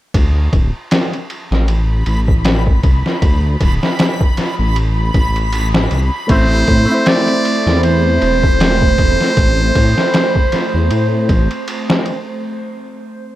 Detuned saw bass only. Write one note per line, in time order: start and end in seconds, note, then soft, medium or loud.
0.14 0.49 D2 loud
0.53 0.72 D1 medium
1.51 2.03 A1 medium
2.07 2.80 A1 medium
2.84 3.03 C2 medium
3.22 3.57 D2 loud
3.61 3.80 D1 medium
4.59 5.11 A1 medium
5.14 5.88 A1 medium
5.91 6.10 C2 medium
6.30 6.64 A1 loud
6.68 6.87 A2 medium
7.67 8.19 E2 medium
8.22 8.96 E1 medium
8.99 9.18 E1 medium
9.37 9.72 A1 loud
9.76 9.95 A2 medium
10.74 10.90 E2 medium
10.91 11.31 A2 medium
11.29 11.49 A1 medium